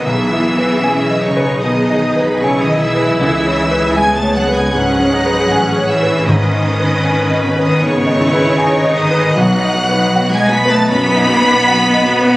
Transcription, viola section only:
\new Staff \with { instrumentName = "Viola section" } { \time 4/4 \key cis \minor \tempo 4 = 78 << { gis'1~ | gis'2 gis'2 | b'8 b'4. gis'4 gis'4 | fis'16 b'16 fis'16 b'16 fis'16 b'16 fis'16 b'16 fis'16 b'16 fis'16 b'16 fis'16 b'16 fis'16 b'16 | } \\ { b4 cis'8 dis'4. e'4~ | e'4 b4 cis'8 dis'8 cis'8 cis'8~ | cis'2 b8 e'8 dis'4 | b16 dis'16 b16 dis'16 b16 dis'16 b16 dis'16 b16 dis'16 b16 dis'16 b16 dis'16 b16 dis'16 | } >> }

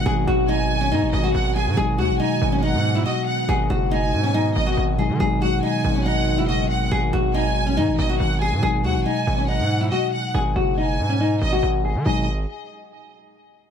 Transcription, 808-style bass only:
\new Staff \with { instrumentName = "808-style bass" } { \clef bass \time 4/4 \key gis \minor \tempo 4 = 140 gis,,8 gis,,4. gis,16 gis,,16 gis,,8 gis,,8. gis,16 | gis,,8 dis,16 gis,,16 r8 gis,,8. gis,8. r4 | gis,,8 fis,,4 gis,4 gis,,8 gis,,8. dis16 | gis,,4 r8 gis,,4~ gis,,16 fis,,8~ fis,,32 gis,,8~ gis,,32 |
gis,,8 gis,,4. gis,16 gis,,16 gis,,8 gis,,8. gis,16 | gis,,8 dis,16 gis,,16 r8 gis,,8. gis,8. r4 | gis,,8 fis,,4 gis,4 gis,,8 gis,,8. dis16 | gis,,4 r2. | }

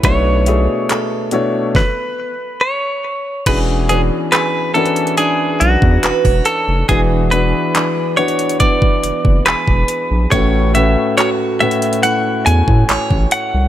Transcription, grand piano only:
\new Staff \with { instrumentName = "Grand piano" } { \time 4/4 \key e \mixolydian \tempo 4 = 70 <b, a d' e' cis''>8 <b, a d' e' gis'>4 <b, a d' e' cis''>8 r2 | <e b cis' d' fis' gis'>8 <e b cis' d' fis' b'>4 <e b cis' d' fis' ais' b'>4. r4 | <e b d' fis' gis'>8 <e b d' fis' b'>4 <e b d' fis' b'>4. r4 | <a, a cis' fis' b'>8 <a, a cis' fis' b'>4 <a, a cis' fis' b'>4. r4 | }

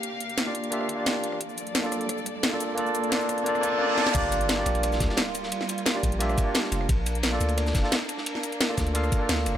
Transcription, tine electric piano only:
\new Staff \with { instrumentName = "Tine electric piano" } { \time 4/4 \key g \minor \tempo 4 = 175 r4 r16 <bes d' f' g' d''>8. <bes d' f' g' e''>8. <bes d' f' g' d''>4~ <bes d' f' g' d''>16 | r4 r16 <bes d' f' a' d''>8. r4 r16 <bes d' f' a' d''>8. | <bes d' f' a' d''>4 <bes d' f' a' d''>4 <bes d' f' a' d''>8 <bes d' f' a' d''>8 <bes d' f' a' d''>8 <bes d' f' a' d''>8 | <bes d' f' g' d''>4~ <bes d' f' g' d''>16 <bes d' f' g' d''>4. <bes d' f' g' d''>16 r4 |
r4 r16 <bes d' f' g' d''>8. <bes d' f' g' e''>8. <bes d' f' g' d''>4~ <bes d' f' g' d''>16 | r4 r16 <bes d' f' a' d''>4. <bes d' f' a' d''>16 r4 | r4 r16 <bes d' f' a' d''>8. <bes d' f' a' f''>8. <bes d' f' a' d''>4~ <bes d' f' a' d''>16 | }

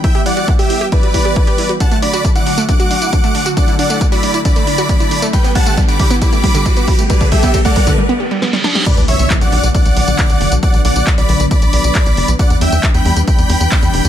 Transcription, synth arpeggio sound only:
\new Staff \with { instrumentName = "Synth arpeggio sound" } { \time 4/4 \key b \minor \tempo 4 = 136 e'16 g'16 e'16 fis'16 e'16 g'16 e'16 g'16 e'16 fis'16 e'16 g'16 e'16 g'16 e'16 fis'16 | d'16 a16 d'16 fis'16 d'16 e'16 d'16 a16 d'16 fis'16 d'16 e'16 d'16 a16 d'16 fis'16 | d'16 e'16 d'16 a16 d'16 fis'16 d'16 e'16 d'16 a16 d'16 fis'16 d'16 e'16 d'16 a16 | g16 b16 g16 a16 g16 d16 g16 b16 g16 a16 g16 d16 g16 b16 g16 a16 |
g16 d16 g16 b16 g16 a16 g16 d16 g16 b16 g'16 g16 b16 g16 d'16 g16 | r1 | r1 | r1 | }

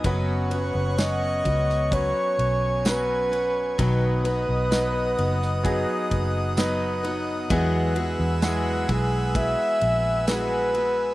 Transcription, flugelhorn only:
\new Staff \with { instrumentName = "Flugelhorn" } { \time 4/4 \key b \major \tempo 4 = 65 r8 b'8 dis''4 cis''4 b'4 | b'2. r4 | r4. gis'8 e''4 b'4 | }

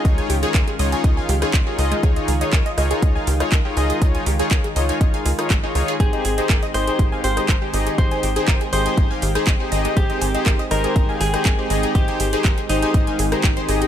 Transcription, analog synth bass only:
\new Staff \with { instrumentName = "Analog synth bass" } { \clef bass \time 4/4 \key aes \major \tempo 4 = 121 des,8 des,8 des,8 des,8 des,8 des,8 des,8 des,8 | des,8 des,8 des,8 des,8 des,8 des,8 des,8 des,8 | des,8 des,8 des,8 des,8 aes,,8 des,8 aes,,8 des,8 | aes,,8 aes,,8 aes,,8 aes,,8 aes,,8 aes,,8 aes,,8 aes,,8 |
aes,,8 aes,,8 aes,,8 aes,,8 aes,,8 aes,,8 aes,,8 aes,,8 | aes,,8 aes,,8 aes,,8 aes,,8 aes,,8 aes,,8 aes,,8 aes,,8 | aes,,8 aes,,8 aes,,8 aes,,8 aes,,8 aes,,8 aes,,8 aes,,8 | }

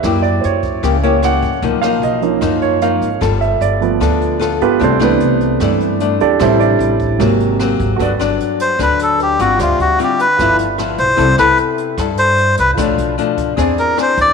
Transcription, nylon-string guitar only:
\new Staff \with { instrumentName = "Nylon-string guitar" } { \time 4/4 \key g \major \tempo 4 = 151 << { <ais e' g'>4. r8 <ais e' g'>8 <ais e' g'>8 <ais e' g'>8 r8 | <eis ais dis'>8 <eis ais dis'>4. <eis ais dis'>4 <eis ais dis'>8 r8 | <b f' a'>4. r8 <b f' a'>4 <b f' a'>4 | <a d' e'>8 <a d' e'>4. <a d' e'>4 <a d' e'>8 r8 |
<g c' e'>4. r8 <ges bes c'>4 <ges bes c'>4 | <fis b d'>8 <fis b d'>4. <fis b d'>4. <g c' f'>8~ | <g c' f'>4 <g c' f'>8 r8 <f b e'>8 r8 <f b e'>8 r8 | <b e' a'>8 <b e' a'>4. <e' a'>2 |
<f a d'>4 <f a d'>4 <bis d' gis'>4 <bis d' gis'>4 | } \\ { fis2 cis2 | b,2 fis,2 | g2 d2 | c2 g2 |
a,2 aes,2 | g,2 d2 | d2 g,2 | c2 g,2 |
b,2 e2 | } >> }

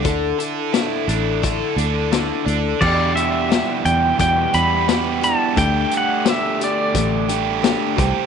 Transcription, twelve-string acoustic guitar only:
\new Staff \with { instrumentName = "Twelve-string acoustic guitar" } { \time 4/4 \key d \mixolydian \tempo 4 = 87 <d d' e' a'>8 <d' e' a'>8 <d d' e' a'>8 <d' e' a'>8 <d d' e' a'>8 <d' e' a'>8 <d d' e' a'>8 <d' e' a'>8 | <e, b, e g d' g'>8 <e g d' g'>8 <e g d' g'>8 <e g d' g'>8 <e, b, e g d' g'>8 <e g d' g'>8 <e g d' g'>8 <e g d' g'>8 | <d a d' g'>8 <a d' g'>8 <d a d' g'>8 <a d' g'>8 <d a d' g'>8 <a d' g'>8 <d a d' g'>8 <g c' g'>8 | }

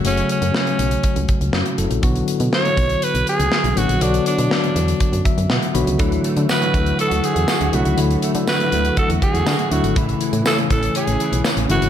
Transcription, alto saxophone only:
\new Staff \with { instrumentName = "Alto saxophone" } { \time 4/4 \key d \lydian \tempo 4 = 121 cis'8 cis'2 r4. | r4 cis''4 b'8 gis'4 fis'8 | d'8 d'2 r4. | r4 b'4 a'8 gis'4 fis'8 |
r4 b'4 a'8 gis'4 fis'8 | r4 a'8 a'8 gis'4 r8 fis'8 | }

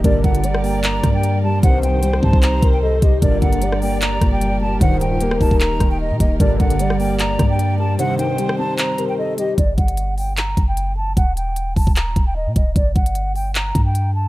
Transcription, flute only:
\new Staff \with { instrumentName = "Flute" } { \time 4/4 \key g \minor \tempo 4 = 151 d''8 fis''4 g''8 bes''8. g''8. a''8 | fis''8 g''4 a''8 bes''8. g''16 ees''8 ees''8 | d''8 fis''4 g''8 bes''8. g''8. a''8 | fis''8 g''4 a''8 bes''8. g''16 ees''8 ees''8 |
d''8 fis''4 g''8 bes''8. g''8. a''8 | fis''8 g''4 a''8 bes''8. g''16 ees''8 ees''8 | d''8 fis''4 g''8 bes''8. g''8. a''8 | fis''8 g''4 a''8 bes''8. g''16 ees''8 ees''8 |
d''8 fis''4 g''8 bes''8. g''8. a''8 | }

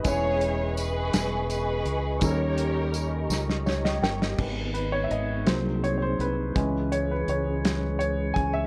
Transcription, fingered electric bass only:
\new Staff \with { instrumentName = "Fingered electric bass" } { \clef bass \time 6/8 \key dis \phrygian \tempo 4. = 55 e,,4. e,,4 cis,8 | dis,4. cis,4 g,,8 | \key cis \dorian gis,,4 gis,,8 bis,,4 bis,,8 | cis,4 cis,4. cis,8 | }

